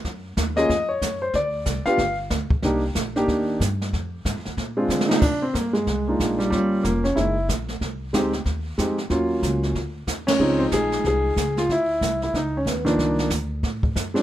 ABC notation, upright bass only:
X:1
M:4/4
L:1/8
Q:"Swing" 1/4=186
K:Cm
V:1 name="Upright bass" clef=bass
_G,,2 E,,2 F,,2 G,,2 | D,,2 C,, z G,,,2 D,, z | C,,2 B,,,2 E,,2 G,,2 | F,,2 (3A,, F,, E,, B,,2 D,2 |
C,2 G,,2 C,,2 B,,,2 | G,,,2 F,,,2 ^F,,,2 ^A,,,2 | C,,2 D,,2 E,,2 F,,2 | E,,2 _D,,2 =D,,2 =E,,2 |
_D,,2 B,,,2 C,,2 D,,2 | D,,2 C,,2 _D,,2 E,,2 | C,,2 D,,2 =A,,2 ^F,,2 |]